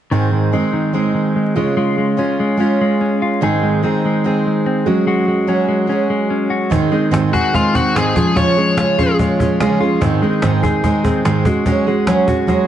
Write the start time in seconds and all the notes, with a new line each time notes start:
0.11 G#2 D#3 G#3 C4 D#4 G#4
0.33 D#3
0.52 G#3 C4 D#4 G#4
0.73 D#3
0.93 G#3 C4 D#4 G#4
1.15 D#3
1.36 G#3
1.55 C#3 G#3 C#4 F4 G#4
1.77 G#3 F4
1.98 G#3
2.17 G#3 C#4 F4 G#4
2.40 G#3
2.57 G#3 C#4 F4 G#4
2.81 G#3
3.01 C#4
3.22 F4
3.41 G#2 D#3 G#3 C4 D#4 G#4
3.63 G#3
3.83 G#3 C4 D#4 G#4
4.05 G#3
4.24 G#3 C4 D#4 G#4
4.47 G#3
4.66 C4
4.86 F#3 G#3 C#4 F#4 G#4
5.07 G#3 F#4
5.28 G#3
5.47 F#3 C#4 F#4 G#4
5.68 G#3
5.87 F#3 C#4 F#4
5.92 G#4
6.10 G#3
6.30 C#4
6.50 F#4
6.70 G#2 D#3 G#3 C4 D#4 G#4, cajon bass
6.91 G#3 C4 D#4 G#4, cajon slap
7.11 G#2 D#3 G#3 C4 D#4 G#4, cajon slap
7.31 G#3 C4 D#4 F#4 G#4, cajon bass
7.53 G#3 C4 D#4 F4 G#4, cajon bass, cajon slap
7.73 G#3 C4 D#4 F#4 G#4, cajon bass
7.95 G#2 D#3 G#3 C4 D#4 G#4, cajon slap
8.14 F3 C#4 F4 G#4, cajon bass
8.35 C#3 F3 G#3 C#4 F4 G#4 C#5, cajon bass
8.57 G#3 C#4 F4 G#4, cajon slap
8.77 C#3 G#3 C#4 F4 G#4, cajon slap
8.98 C#4 F4 G#4, cajon bass
9.19 G#3 C#4 F4 G#4, cajon bass, cajon slap
9.39 C#4 F4 G#4, cajon bass
9.60 C#3 G#3 C#4 F4 G#4, cajon slap
9.80 C#4 F4 G#4, cajon slap
10.01 G#2 D#3 G#3 C4 D#4 G#4, cajon bass
10.21 G#3 C4 D#4 G#4, cajon slap
10.42 G#2 D#3 G#3 C4 D#4 G#4, cajon slap
10.62 G#3 C4 D#4 G#4, cajon bass
10.83 G#3 C4 D#4 G#4, cajon bass, cajon slap
11.04 G#3 C4 D#4 G#4, cajon bass
11.25 G#2 D#3 G#3 C4 D#4 G#4, cajon slap
11.45 G#3 C#4 F#4 G#4, cajon bass
11.66 F#3 G#3 C#4 F#4 G#4, cajon bass
11.86 G#3 C#4 F#4 G#4, cajon slap
12.07 F#3 C#4 F#4 G#4, cajon slap
12.27 C#4 F#4 G#4, cajon bass
12.47 F#3 G#3 C#4 F#4 G#4, cajon bass, cajon slap